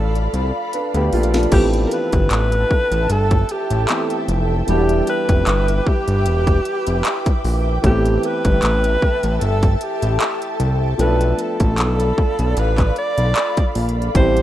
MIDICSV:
0, 0, Header, 1, 6, 480
1, 0, Start_track
1, 0, Key_signature, 0, "minor"
1, 0, Tempo, 789474
1, 924, Time_signature, 4, 2, 24, 8
1, 8769, End_track
2, 0, Start_track
2, 0, Title_t, "Ambient pad"
2, 0, Program_c, 0, 92
2, 0, Note_on_c, 0, 69, 86
2, 0, Note_on_c, 0, 74, 76
2, 0, Note_on_c, 0, 77, 78
2, 0, Note_on_c, 0, 83, 95
2, 899, Note_off_c, 0, 69, 0
2, 904, Note_off_c, 0, 77, 0
2, 904, Note_off_c, 0, 83, 0
2, 905, Note_off_c, 0, 74, 0
2, 926, Note_on_c, 0, 69, 84
2, 926, Note_on_c, 0, 79, 78
2, 928, Note_on_c, 0, 76, 79
2, 928, Note_on_c, 0, 81, 94
2, 2826, Note_off_c, 0, 69, 0
2, 2827, Note_off_c, 0, 81, 0
2, 2846, Note_on_c, 0, 86, 99
2, 2847, Note_on_c, 0, 71, 91
2, 4742, Note_off_c, 0, 76, 0
2, 4746, Note_off_c, 0, 71, 0
2, 4746, Note_off_c, 0, 86, 0
2, 4764, Note_on_c, 0, 76, 82
2, 4765, Note_on_c, 0, 81, 98
2, 4766, Note_on_c, 0, 69, 88
2, 6661, Note_off_c, 0, 79, 0
2, 6665, Note_off_c, 0, 76, 0
2, 6665, Note_off_c, 0, 81, 0
2, 6683, Note_on_c, 0, 74, 79
2, 6684, Note_on_c, 0, 77, 79
2, 6684, Note_on_c, 0, 83, 93
2, 8580, Note_off_c, 0, 69, 0
2, 8584, Note_off_c, 0, 74, 0
2, 8584, Note_off_c, 0, 77, 0
2, 8585, Note_off_c, 0, 83, 0
2, 8769, End_track
3, 0, Start_track
3, 0, Title_t, "Alto saxophone"
3, 0, Program_c, 1, 65
3, 0, Note_on_c, 1, 69, 87
3, 187, Note_off_c, 1, 69, 0
3, 933, Note_on_c, 1, 67, 92
3, 1021, Note_off_c, 1, 67, 0
3, 1135, Note_on_c, 1, 70, 84
3, 1174, Note_on_c, 1, 71, 113
3, 1183, Note_off_c, 1, 70, 0
3, 1895, Note_on_c, 1, 69, 98
3, 1904, Note_off_c, 1, 71, 0
3, 2139, Note_on_c, 1, 67, 84
3, 2148, Note_off_c, 1, 69, 0
3, 2611, Note_off_c, 1, 67, 0
3, 2859, Note_on_c, 1, 67, 98
3, 3075, Note_off_c, 1, 67, 0
3, 3098, Note_on_c, 1, 71, 105
3, 3578, Note_on_c, 1, 67, 93
3, 3587, Note_off_c, 1, 71, 0
3, 4531, Note_off_c, 1, 67, 0
3, 4779, Note_on_c, 1, 67, 103
3, 5023, Note_on_c, 1, 71, 113
3, 5032, Note_off_c, 1, 67, 0
3, 5695, Note_off_c, 1, 71, 0
3, 5695, Note_on_c, 1, 71, 72
3, 5741, Note_on_c, 1, 69, 101
3, 5750, Note_off_c, 1, 71, 0
3, 5929, Note_off_c, 1, 69, 0
3, 5933, Note_on_c, 1, 69, 63
3, 5980, Note_on_c, 1, 67, 85
3, 5989, Note_off_c, 1, 69, 0
3, 6452, Note_off_c, 1, 67, 0
3, 6694, Note_on_c, 1, 71, 95
3, 6937, Note_on_c, 1, 69, 93
3, 6946, Note_off_c, 1, 71, 0
3, 7657, Note_on_c, 1, 71, 104
3, 7666, Note_off_c, 1, 69, 0
3, 7890, Note_off_c, 1, 71, 0
3, 7894, Note_on_c, 1, 74, 102
3, 8345, Note_off_c, 1, 74, 0
3, 8613, Note_on_c, 1, 72, 98
3, 8769, Note_off_c, 1, 72, 0
3, 8769, End_track
4, 0, Start_track
4, 0, Title_t, "Grand piano"
4, 0, Program_c, 2, 0
4, 0, Control_c, 2, 64, 127
4, 0, Note_on_c, 2, 53, 65
4, 0, Note_on_c, 2, 57, 60
4, 0, Note_on_c, 2, 59, 65
4, 0, Note_on_c, 2, 62, 59
4, 0, Note_on_c, 2, 65, 76
4, 417, Note_off_c, 2, 53, 0
4, 419, Note_off_c, 2, 57, 0
4, 423, Note_off_c, 2, 59, 0
4, 427, Note_off_c, 2, 62, 0
4, 430, Note_off_c, 2, 65, 0
4, 450, Note_on_c, 2, 71, 61
4, 455, Note_on_c, 2, 62, 55
4, 570, Note_off_c, 2, 71, 0
4, 573, Note_off_c, 2, 62, 0
4, 580, Note_on_c, 2, 67, 74
4, 584, Note_on_c, 2, 59, 63
4, 682, Note_off_c, 2, 67, 0
4, 684, Note_off_c, 2, 59, 0
4, 688, Note_on_c, 2, 65, 74
4, 692, Note_on_c, 2, 57, 63
4, 809, Note_off_c, 2, 65, 0
4, 811, Note_off_c, 2, 57, 0
4, 819, Note_on_c, 2, 62, 63
4, 823, Note_on_c, 2, 53, 56
4, 915, Note_on_c, 2, 52, 69
4, 921, Note_on_c, 2, 57, 62
4, 928, Note_on_c, 2, 59, 61
4, 932, Control_c, 2, 64, 0
4, 935, Note_on_c, 2, 60, 66
4, 943, Note_on_c, 2, 67, 73
4, 1037, Control_c, 2, 64, 127
4, 1044, Note_off_c, 2, 62, 0
4, 1046, Note_off_c, 2, 53, 0
4, 2335, Note_off_c, 2, 52, 0
4, 2338, Note_off_c, 2, 57, 0
4, 2342, Note_off_c, 2, 59, 0
4, 2345, Note_off_c, 2, 60, 0
4, 2349, Note_off_c, 2, 67, 0
4, 2364, Note_on_c, 2, 52, 52
4, 2367, Note_on_c, 2, 57, 46
4, 2370, Note_on_c, 2, 59, 46
4, 2375, Note_on_c, 2, 60, 45
4, 2377, Note_on_c, 2, 67, 54
4, 2830, Note_off_c, 2, 52, 0
4, 2839, Note_on_c, 2, 52, 69
4, 2844, Note_off_c, 2, 59, 0
4, 2845, Note_off_c, 2, 57, 0
4, 2846, Note_on_c, 2, 55, 59
4, 2850, Note_off_c, 2, 60, 0
4, 2851, Note_off_c, 2, 67, 0
4, 2851, Control_c, 2, 64, 0
4, 2853, Note_on_c, 2, 59, 65
4, 2858, Note_on_c, 2, 62, 65
4, 2865, Note_on_c, 2, 66, 61
4, 2897, Note_off_c, 2, 66, 0
4, 2905, Note_on_c, 2, 67, 72
4, 2941, Control_c, 2, 64, 127
4, 4737, Note_off_c, 2, 52, 0
4, 4741, Note_off_c, 2, 55, 0
4, 4744, Note_off_c, 2, 59, 0
4, 4747, Note_off_c, 2, 62, 0
4, 4754, Note_on_c, 2, 52, 71
4, 4761, Note_on_c, 2, 57, 65
4, 4768, Note_on_c, 2, 59, 65
4, 4770, Note_off_c, 2, 67, 0
4, 4771, Control_c, 2, 64, 0
4, 4775, Note_on_c, 2, 60, 62
4, 4782, Note_on_c, 2, 67, 78
4, 4865, Control_c, 2, 64, 127
4, 6655, Note_off_c, 2, 52, 0
4, 6658, Note_off_c, 2, 57, 0
4, 6662, Note_off_c, 2, 59, 0
4, 6665, Note_off_c, 2, 60, 0
4, 6669, Note_off_c, 2, 67, 0
4, 6675, Note_on_c, 2, 53, 72
4, 6680, Note_on_c, 2, 57, 65
4, 6690, Note_on_c, 2, 59, 61
4, 6692, Control_c, 2, 64, 0
4, 6697, Note_on_c, 2, 62, 65
4, 6702, Note_on_c, 2, 69, 73
4, 6795, Control_c, 2, 64, 127
4, 8575, Note_off_c, 2, 53, 0
4, 8578, Note_off_c, 2, 57, 0
4, 8582, Note_off_c, 2, 59, 0
4, 8586, Note_off_c, 2, 62, 0
4, 8589, Note_off_c, 2, 69, 0
4, 8599, Note_on_c, 2, 52, 68
4, 8605, Note_on_c, 2, 57, 65
4, 8611, Control_c, 2, 64, 0
4, 8614, Note_on_c, 2, 55, 63
4, 8619, Note_on_c, 2, 60, 60
4, 8626, Note_on_c, 2, 67, 78
4, 8702, Control_c, 2, 64, 127
4, 8769, Note_off_c, 2, 52, 0
4, 8769, Note_off_c, 2, 55, 0
4, 8769, Note_off_c, 2, 57, 0
4, 8769, Note_off_c, 2, 60, 0
4, 8769, Note_off_c, 2, 67, 0
4, 8769, End_track
5, 0, Start_track
5, 0, Title_t, "Analog synth bass"
5, 0, Program_c, 3, 38
5, 0, Note_on_c, 3, 33, 97
5, 173, Note_off_c, 3, 33, 0
5, 204, Note_on_c, 3, 36, 84
5, 317, Note_off_c, 3, 36, 0
5, 574, Note_on_c, 3, 38, 95
5, 670, Note_off_c, 3, 38, 0
5, 685, Note_on_c, 3, 34, 85
5, 895, Note_off_c, 3, 34, 0
5, 925, Note_on_c, 3, 33, 112
5, 1134, Note_off_c, 3, 33, 0
5, 1295, Note_on_c, 3, 31, 91
5, 1391, Note_off_c, 3, 31, 0
5, 1402, Note_on_c, 3, 33, 88
5, 1613, Note_off_c, 3, 33, 0
5, 1773, Note_on_c, 3, 33, 91
5, 1870, Note_off_c, 3, 33, 0
5, 1884, Note_on_c, 3, 31, 87
5, 2094, Note_off_c, 3, 31, 0
5, 2253, Note_on_c, 3, 33, 91
5, 2350, Note_off_c, 3, 33, 0
5, 2604, Note_on_c, 3, 29, 100
5, 2814, Note_off_c, 3, 29, 0
5, 2846, Note_on_c, 3, 28, 113
5, 3055, Note_off_c, 3, 28, 0
5, 3217, Note_on_c, 3, 29, 86
5, 3312, Note_off_c, 3, 29, 0
5, 3324, Note_on_c, 3, 31, 102
5, 3534, Note_off_c, 3, 31, 0
5, 3696, Note_on_c, 3, 31, 95
5, 3805, Note_on_c, 3, 28, 102
5, 3814, Note_off_c, 3, 31, 0
5, 4014, Note_off_c, 3, 28, 0
5, 4178, Note_on_c, 3, 29, 84
5, 4272, Note_off_c, 3, 29, 0
5, 4527, Note_on_c, 3, 34, 97
5, 4736, Note_off_c, 3, 34, 0
5, 4766, Note_on_c, 3, 33, 111
5, 4975, Note_off_c, 3, 33, 0
5, 5138, Note_on_c, 3, 31, 92
5, 5232, Note_off_c, 3, 31, 0
5, 5247, Note_on_c, 3, 33, 99
5, 5455, Note_off_c, 3, 33, 0
5, 5616, Note_on_c, 3, 33, 86
5, 5711, Note_off_c, 3, 33, 0
5, 5725, Note_on_c, 3, 31, 92
5, 5935, Note_off_c, 3, 31, 0
5, 6095, Note_on_c, 3, 33, 93
5, 6191, Note_off_c, 3, 33, 0
5, 6444, Note_on_c, 3, 36, 94
5, 6654, Note_off_c, 3, 36, 0
5, 6682, Note_on_c, 3, 35, 105
5, 6893, Note_off_c, 3, 35, 0
5, 7053, Note_on_c, 3, 33, 89
5, 7162, Note_on_c, 3, 35, 102
5, 7171, Note_off_c, 3, 33, 0
5, 7373, Note_off_c, 3, 35, 0
5, 7534, Note_on_c, 3, 35, 84
5, 7630, Note_off_c, 3, 35, 0
5, 7642, Note_on_c, 3, 33, 105
5, 7853, Note_off_c, 3, 33, 0
5, 8012, Note_on_c, 3, 35, 90
5, 8109, Note_off_c, 3, 35, 0
5, 8362, Note_on_c, 3, 34, 86
5, 8573, Note_off_c, 3, 34, 0
5, 8603, Note_on_c, 3, 33, 109
5, 8769, Note_off_c, 3, 33, 0
5, 8769, End_track
6, 0, Start_track
6, 0, Title_t, "Drums"
6, 94, Note_on_c, 9, 42, 42
6, 154, Note_off_c, 9, 42, 0
6, 205, Note_on_c, 9, 42, 58
6, 265, Note_off_c, 9, 42, 0
6, 444, Note_on_c, 9, 42, 77
6, 505, Note_off_c, 9, 42, 0
6, 574, Note_on_c, 9, 42, 49
6, 635, Note_off_c, 9, 42, 0
6, 684, Note_on_c, 9, 42, 68
6, 686, Note_on_c, 9, 46, 68
6, 745, Note_off_c, 9, 42, 0
6, 746, Note_off_c, 9, 46, 0
6, 750, Note_on_c, 9, 42, 54
6, 810, Note_off_c, 9, 42, 0
6, 813, Note_on_c, 9, 42, 50
6, 816, Note_on_c, 9, 38, 96
6, 869, Note_off_c, 9, 42, 0
6, 869, Note_on_c, 9, 42, 40
6, 877, Note_off_c, 9, 38, 0
6, 922, Note_off_c, 9, 42, 0
6, 922, Note_on_c, 9, 42, 72
6, 922, Note_on_c, 9, 49, 99
6, 924, Note_on_c, 9, 36, 114
6, 983, Note_off_c, 9, 42, 0
6, 983, Note_off_c, 9, 49, 0
6, 985, Note_off_c, 9, 36, 0
6, 1055, Note_on_c, 9, 42, 50
6, 1115, Note_off_c, 9, 42, 0
6, 1164, Note_on_c, 9, 42, 66
6, 1225, Note_off_c, 9, 42, 0
6, 1292, Note_on_c, 9, 42, 56
6, 1295, Note_on_c, 9, 36, 93
6, 1353, Note_off_c, 9, 42, 0
6, 1356, Note_off_c, 9, 36, 0
6, 1402, Note_on_c, 9, 42, 76
6, 1404, Note_on_c, 9, 39, 123
6, 1463, Note_off_c, 9, 42, 0
6, 1465, Note_off_c, 9, 39, 0
6, 1532, Note_on_c, 9, 42, 51
6, 1593, Note_off_c, 9, 42, 0
6, 1645, Note_on_c, 9, 36, 89
6, 1706, Note_off_c, 9, 36, 0
6, 1773, Note_on_c, 9, 42, 54
6, 1834, Note_off_c, 9, 42, 0
6, 1882, Note_on_c, 9, 42, 76
6, 1943, Note_off_c, 9, 42, 0
6, 2011, Note_on_c, 9, 42, 44
6, 2013, Note_on_c, 9, 36, 90
6, 2072, Note_off_c, 9, 42, 0
6, 2074, Note_off_c, 9, 36, 0
6, 2121, Note_on_c, 9, 42, 66
6, 2182, Note_off_c, 9, 42, 0
6, 2252, Note_on_c, 9, 42, 62
6, 2313, Note_off_c, 9, 42, 0
6, 2362, Note_on_c, 9, 42, 84
6, 2364, Note_on_c, 9, 39, 113
6, 2423, Note_off_c, 9, 42, 0
6, 2424, Note_off_c, 9, 39, 0
6, 2493, Note_on_c, 9, 42, 48
6, 2554, Note_off_c, 9, 42, 0
6, 2605, Note_on_c, 9, 42, 66
6, 2666, Note_off_c, 9, 42, 0
6, 2844, Note_on_c, 9, 42, 68
6, 2905, Note_off_c, 9, 42, 0
6, 2974, Note_on_c, 9, 42, 48
6, 3035, Note_off_c, 9, 42, 0
6, 3083, Note_on_c, 9, 42, 68
6, 3144, Note_off_c, 9, 42, 0
6, 3215, Note_on_c, 9, 42, 56
6, 3216, Note_on_c, 9, 36, 92
6, 3276, Note_off_c, 9, 42, 0
6, 3277, Note_off_c, 9, 36, 0
6, 3324, Note_on_c, 9, 42, 77
6, 3326, Note_on_c, 9, 39, 127
6, 3385, Note_off_c, 9, 42, 0
6, 3387, Note_off_c, 9, 39, 0
6, 3455, Note_on_c, 9, 42, 54
6, 3516, Note_off_c, 9, 42, 0
6, 3566, Note_on_c, 9, 36, 94
6, 3627, Note_off_c, 9, 36, 0
6, 3694, Note_on_c, 9, 42, 54
6, 3755, Note_off_c, 9, 42, 0
6, 3804, Note_on_c, 9, 42, 78
6, 3865, Note_off_c, 9, 42, 0
6, 3934, Note_on_c, 9, 36, 94
6, 3935, Note_on_c, 9, 42, 43
6, 3995, Note_off_c, 9, 36, 0
6, 3995, Note_off_c, 9, 42, 0
6, 4045, Note_on_c, 9, 42, 60
6, 4106, Note_off_c, 9, 42, 0
6, 4175, Note_on_c, 9, 42, 63
6, 4235, Note_off_c, 9, 42, 0
6, 4285, Note_on_c, 9, 42, 82
6, 4286, Note_on_c, 9, 39, 115
6, 4345, Note_off_c, 9, 42, 0
6, 4347, Note_off_c, 9, 39, 0
6, 4415, Note_on_c, 9, 36, 97
6, 4415, Note_on_c, 9, 42, 50
6, 4475, Note_off_c, 9, 42, 0
6, 4476, Note_off_c, 9, 36, 0
6, 4526, Note_on_c, 9, 46, 71
6, 4587, Note_off_c, 9, 46, 0
6, 4765, Note_on_c, 9, 36, 119
6, 4766, Note_on_c, 9, 42, 69
6, 4826, Note_off_c, 9, 36, 0
6, 4827, Note_off_c, 9, 42, 0
6, 4897, Note_on_c, 9, 42, 50
6, 4958, Note_off_c, 9, 42, 0
6, 5006, Note_on_c, 9, 42, 63
6, 5067, Note_off_c, 9, 42, 0
6, 5135, Note_on_c, 9, 42, 60
6, 5136, Note_on_c, 9, 36, 92
6, 5196, Note_off_c, 9, 42, 0
6, 5197, Note_off_c, 9, 36, 0
6, 5243, Note_on_c, 9, 42, 78
6, 5246, Note_on_c, 9, 39, 121
6, 5304, Note_off_c, 9, 42, 0
6, 5306, Note_off_c, 9, 39, 0
6, 5374, Note_on_c, 9, 42, 54
6, 5435, Note_off_c, 9, 42, 0
6, 5486, Note_on_c, 9, 36, 91
6, 5547, Note_off_c, 9, 36, 0
6, 5613, Note_on_c, 9, 42, 56
6, 5674, Note_off_c, 9, 42, 0
6, 5723, Note_on_c, 9, 42, 75
6, 5784, Note_off_c, 9, 42, 0
6, 5853, Note_on_c, 9, 42, 44
6, 5854, Note_on_c, 9, 36, 91
6, 5914, Note_off_c, 9, 36, 0
6, 5914, Note_off_c, 9, 42, 0
6, 5963, Note_on_c, 9, 42, 64
6, 6024, Note_off_c, 9, 42, 0
6, 6094, Note_on_c, 9, 42, 65
6, 6155, Note_off_c, 9, 42, 0
6, 6204, Note_on_c, 9, 42, 82
6, 6205, Note_on_c, 9, 39, 115
6, 6265, Note_off_c, 9, 42, 0
6, 6266, Note_off_c, 9, 39, 0
6, 6334, Note_on_c, 9, 42, 48
6, 6395, Note_off_c, 9, 42, 0
6, 6444, Note_on_c, 9, 42, 62
6, 6504, Note_off_c, 9, 42, 0
6, 6684, Note_on_c, 9, 42, 72
6, 6744, Note_off_c, 9, 42, 0
6, 6814, Note_on_c, 9, 42, 50
6, 6875, Note_off_c, 9, 42, 0
6, 6922, Note_on_c, 9, 42, 64
6, 6983, Note_off_c, 9, 42, 0
6, 7052, Note_on_c, 9, 42, 60
6, 7054, Note_on_c, 9, 36, 91
6, 7113, Note_off_c, 9, 42, 0
6, 7115, Note_off_c, 9, 36, 0
6, 7161, Note_on_c, 9, 42, 78
6, 7163, Note_on_c, 9, 39, 125
6, 7222, Note_off_c, 9, 42, 0
6, 7224, Note_off_c, 9, 39, 0
6, 7294, Note_on_c, 9, 42, 51
6, 7355, Note_off_c, 9, 42, 0
6, 7405, Note_on_c, 9, 36, 91
6, 7465, Note_off_c, 9, 36, 0
6, 7532, Note_on_c, 9, 42, 52
6, 7593, Note_off_c, 9, 42, 0
6, 7641, Note_on_c, 9, 42, 76
6, 7702, Note_off_c, 9, 42, 0
6, 7771, Note_on_c, 9, 42, 46
6, 7772, Note_on_c, 9, 36, 95
6, 7772, Note_on_c, 9, 39, 70
6, 7832, Note_off_c, 9, 42, 0
6, 7833, Note_off_c, 9, 36, 0
6, 7833, Note_off_c, 9, 39, 0
6, 7880, Note_on_c, 9, 42, 40
6, 7941, Note_off_c, 9, 42, 0
6, 8011, Note_on_c, 9, 42, 68
6, 8072, Note_off_c, 9, 42, 0
6, 8120, Note_on_c, 9, 42, 80
6, 8122, Note_on_c, 9, 39, 109
6, 8181, Note_off_c, 9, 42, 0
6, 8182, Note_off_c, 9, 39, 0
6, 8251, Note_on_c, 9, 42, 48
6, 8253, Note_on_c, 9, 36, 91
6, 8311, Note_off_c, 9, 42, 0
6, 8314, Note_off_c, 9, 36, 0
6, 8362, Note_on_c, 9, 42, 68
6, 8363, Note_on_c, 9, 46, 73
6, 8423, Note_off_c, 9, 42, 0
6, 8424, Note_off_c, 9, 46, 0
6, 8443, Note_on_c, 9, 42, 54
6, 8504, Note_off_c, 9, 42, 0
6, 8523, Note_on_c, 9, 42, 42
6, 8583, Note_off_c, 9, 42, 0
6, 8603, Note_on_c, 9, 36, 120
6, 8603, Note_on_c, 9, 42, 73
6, 8663, Note_off_c, 9, 42, 0
6, 8664, Note_off_c, 9, 36, 0
6, 8735, Note_on_c, 9, 42, 49
6, 8769, Note_off_c, 9, 42, 0
6, 8769, End_track
0, 0, End_of_file